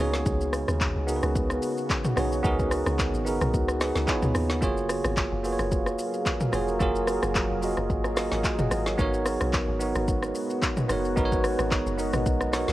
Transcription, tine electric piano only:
Already playing: B3
0.00 D#4 F#4 G#4 C#5
1.06 B3 D#4 F#4 G#4 A#4
1.16 B4
2.15 B3 D#4 F#4 G#4 C#5
2.43 B3 D#4 F#4 G#4 A#4
3.25 B3 D#4 F#4 G#4 A#4
3.79 B3 D#4 F#4 G#4 B4 F#5
4.06 B3 D#4 E4 G#4 C#5 B5
4.15 F4
4.61 A#3 F4 F#4 G#4 C#5
5.43 A#3 F4 F#4 G#4 B4
5.53 C#5
6.52 A#3 F4 F#4 G#4 C#5
6.79 A#3 F4 F#4 G#4 A#4
7.61 A#3 F4 F#4 G#4 D#5
8.16 A#3 F4 F#4 G#4 D#5
8.45 F5 G#5
8.60 D#5 F#5
8.72 D#5
8.87 A#4 C#5
8.98 B3 D#4 F#4 A#4 C#5
9.79 B3 D#4 F#4 A#4 C#5
10.88 B3 D#4 F#4 A#4 C#5
11.16 B3 D#4 F#4 A#4 B4
11.25 C#5
11.97 B3 D#4 F#4 A#4 D#5
12.52 B3 D#4 F#4 A#4 C#5

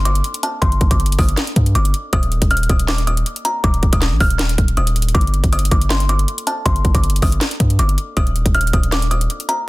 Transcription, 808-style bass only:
Already playing: G1
0.62 G1
0.81 G1
0.91 G1
1.19 G1
1.56 G2
1.75 G1
2.13 D#1
2.42 D#1
2.70 D#1
3.64 D#1
3.83 D#1
3.93 D#1
4.12 A#1
4.21 D#1
4.58 D#1
4.77 D#1
5.15 G1
5.44 G1
5.71 G1
6.66 G1
6.85 G1
6.95 G1
7.22 G1
7.60 G2
7.79 G1
8.17 D#1
8.46 D#1
8.73 D#1

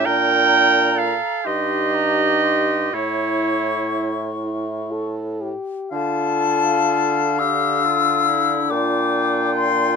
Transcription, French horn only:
0.06 D4
1.46 D#4
2.93 E4
4.44 E4
4.92 A4
5.43 G4
5.92 F4
7.40 D4

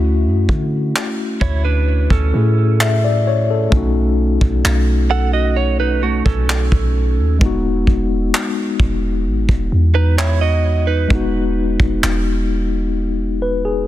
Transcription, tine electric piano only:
Already playing: A3 C#4 E4 F#4
2.33 A3 C#4 E4 G#4
2.81 E5
3.04 D5
3.27 C#5
3.51 A4
3.70 A3 C#4
3.75 D#4 F#4
7.39 G#3 B3
7.44 D#4 F#4
11.08 G#3 B3
11.13 D#4 F#4
13.42 B4
13.65 G#4

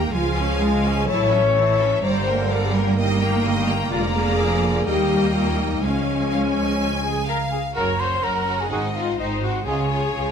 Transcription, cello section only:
0.12 F3
0.59 G#3
1.07 F#3
1.55 E3
2.02 G3
2.97 A#3
3.92 G#3
4.39 F3
4.87 G3
5.82 G#3
7.76 F#2
8.24 F#2
8.72 G#2
9.19 G#2
9.66 C#3
10.13 C#3

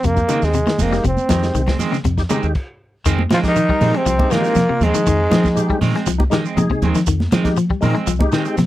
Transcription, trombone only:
0.06 A#3
0.44 G#3
0.82 A#3
1.07 C4
3.34 F4
3.48 D#4
3.97 C4
4.31 A#3
4.84 G#3

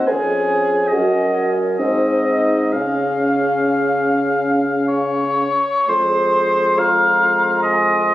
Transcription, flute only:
Already playing: D#5
0.11 C#5
0.93 D#5
1.34 C#5
1.80 C5
2.25 D#5
2.75 F5
5.90 C6
6.78 A#5
7.65 G#5

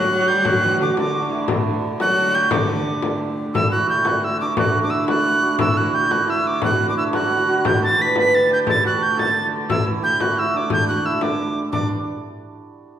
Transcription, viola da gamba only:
0.10 F#3
0.29 G3
0.45 F#3
0.64 E3
0.80 D3
0.98 D3
1.99 F#3
2.51 D3

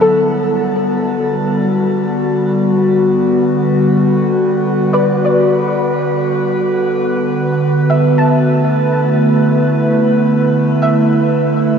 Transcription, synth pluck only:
Already playing: C#5 E5 F#5
0.01 A4
4.93 B4 D5
5.25 D5
7.90 E5
8.18 A5
10.82 E5

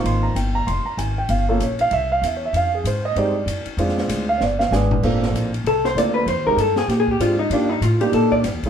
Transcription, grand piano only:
Already playing: A#3 C4 D#4 F4
0.06 C6
0.23 A#5
0.36 G5
0.55 A#5
0.67 C6
0.86 A#5
0.98 G#5
1.18 G5
1.30 F5
1.49 A#3 C#4 F4 A4
1.63 C#5
1.81 F5
1.93 E5
2.12 F5
2.26 E5
2.37 C#5
2.45 E5
2.56 F5
2.75 G#4
2.87 C5
3.05 D#5
3.17 G#3 C4 D#4 G4 D5
3.79 G#3 C4 D4 F4
4.29 F5
4.38 C#5
4.42 D5
4.59 F5
4.73 G#3 B3 D4 G#4 G#5
5.03 A#3 C4 D4 F4 A4
5.96 A#3 C4 D4 F4 A4
6.46 G#3 C4 D#4 G4 A#4
7.20 G#3 C4 D4 F4 G4
7.52 A#3 D4 D#4 F4 G4
8.00 A#3 D4 D#4 F4 G4
8.66 A3 C#4 D#4 F4 G#4

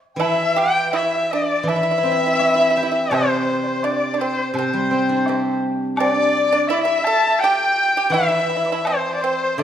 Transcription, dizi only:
0.14 G5
0.21 E5
0.58 G5
0.95 E5
1.30 D5
1.67 E5
3.11 C5
3.62 D5
3.66 C5
3.83 D5
3.90 C5
3.96 D5
4.17 C5
4.54 C5
5.97 D5
6.67 E5
6.82 E5
7.40 G5
8.06 G5
8.12 E5
8.65 D5 C6 D6
8.72 G5 A5
8.79 D5 E5
8.84 C5
9.59 D5

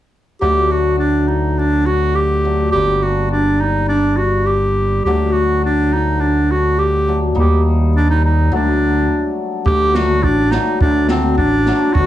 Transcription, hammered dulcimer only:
0.41 F#3 A3 D4
2.44 F#3 A3 D4
2.74 G3 A#3 D4
5.07 F#3 A3 D4
7.08 F#3 A3 D4
7.35 G3 A#3 D#4
8.52 F#3 A3 D4
9.96 F#3 A3 D4
10.53 F#3 A3 D4
11.11 F#3 A3 D4
11.68 F#3 A3 D4

